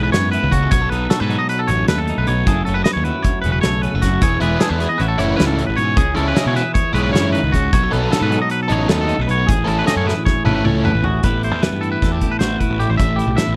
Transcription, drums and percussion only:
0.13 snare, closed hi-hat
0.33 closed hi-hat
0.52 kick, closed hi-hat
0.71 kick, closed hi-hat
0.92 closed hi-hat
1.10 snare, closed hi-hat
1.30 closed hi-hat
1.49 closed hi-hat
1.68 closed hi-hat
1.88 snare, closed hi-hat
2.08 closed hi-hat
2.27 closed hi-hat
2.47 kick, closed hi-hat
2.67 closed hi-hat
2.85 snare, closed hi-hat
3.05 closed hi-hat
3.24 kick, closed hi-hat
3.44 closed hi-hat
3.63 snare, closed hi-hat
3.83 closed hi-hat
4.02 kick, snare, closed hi-hat
4.22 kick, closed hi-hat
4.41 closed hi-hat
4.60 snare, closed hi-hat
4.80 snare, closed hi-hat
5.00 closed hi-hat
5.19 closed hi-hat
5.40 snare, closed hi-hat
5.59 closed hi-hat
5.78 closed hi-hat
5.97 kick, closed hi-hat
6.17 closed hi-hat
6.36 snare, closed hi-hat
6.56 snare, closed hi-hat
6.75 kick, closed hi-hat
6.95 closed hi-hat
7.15 snare, closed hi-hat
7.35 closed hi-hat
7.54 kick, closed hi-hat
7.73 kick, closed hi-hat
7.93 closed hi-hat
8.13 snare, closed hi-hat
8.32 closed hi-hat
8.50 closed hi-hat
8.70 closed hi-hat
8.89 snare, closed hi-hat
9.09 closed hi-hat
9.29 closed hi-hat
9.49 kick, closed hi-hat
9.68 closed hi-hat
9.87 snare, closed hi-hat
10.09 snare
10.27 kick, snare
10.46 high tom
10.65 mid tom
10.85 mid tom
11.04 floor tom
11.23 kick, closed hi-hat
11.43 closed hi-hat
11.63 snare, closed hi-hat
11.83 closed hi-hat
12.02 kick, snare, closed hi-hat
12.21 kick, closed hi-hat
12.40 snare, closed hi-hat
12.61 kick, closed hi-hat
12.80 closed hi-hat
13.00 kick, closed hi-hat
13.19 closed hi-hat
13.38 snare, closed hi-hat

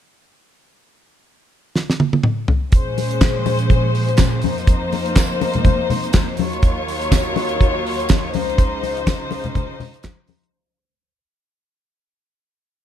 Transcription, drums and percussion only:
1.76 snare
1.90 snare
2.00 high tom
2.13 high tom
2.23 mid tom
2.48 floor tom
2.72 kick, closed hi-hat
2.98 open hi-hat, muted conga
3.11 closed hi-hat
3.21 kick, snare, clap, closed hi-hat, tambourine, high conga
3.46 open hi-hat, muted conga
3.59 closed hi-hat
3.70 kick, closed hi-hat, muted conga
3.95 open hi-hat
4.08 closed hi-hat
4.17 kick, snare, clap, closed hi-hat, tambourine, high conga
4.42 open hi-hat, high conga
4.58 closed hi-hat
4.67 kick, closed hi-hat
4.92 open hi-hat, muted conga
5.06 closed hi-hat
5.15 kick, snare, clap, closed hi-hat, tambourine, high conga
5.41 open hi-hat, muted conga
5.54 closed hi-hat, low conga
5.65 kick, closed hi-hat, muted conga, low conga
5.90 open hi-hat, low conga
6.04 closed hi-hat
6.13 kick, snare, clap, closed hi-hat, tambourine, high conga
6.37 open hi-hat, high conga
6.53 closed hi-hat
6.63 kick, closed hi-hat
6.88 open hi-hat
7.02 closed hi-hat
7.12 kick, snare, clap, closed hi-hat, tambourine, high conga
7.36 open hi-hat, muted conga
7.49 closed hi-hat
7.61 kick, closed hi-hat, muted conga
7.87 open hi-hat
8.00 closed hi-hat
8.09 kick, snare, clap, closed hi-hat, tambourine, high conga
8.34 open hi-hat, high conga
8.50 closed hi-hat
8.58 kick, closed hi-hat
8.83 open hi-hat, muted conga
8.97 closed hi-hat
9.07 kick, snare, clap, closed hi-hat, tambourine, high conga
9.31 open hi-hat, muted conga
9.44 closed hi-hat, low conga
9.55 kick, closed hi-hat, muted conga, low conga
9.80 open hi-hat, low conga
9.94 closed hi-hat
10.03 kick, snare, clap, closed hi-hat, tambourine, high conga
10.28 open hi-hat, high conga
10.43 closed hi-hat

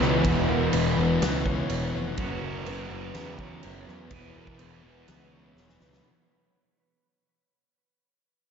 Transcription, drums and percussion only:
0.01 snare
0.25 kick, crash
0.73 crash
1.22 snare, crash
1.46 kick
1.70 crash
2.18 kick, crash
2.66 crash
3.15 snare, crash
3.39 kick
3.63 crash
3.88 snare
4.11 kick, crash
4.47 kick
4.59 crash
5.08 snare, crash
5.57 snare
5.69 snare
5.81 snare
5.93 snare

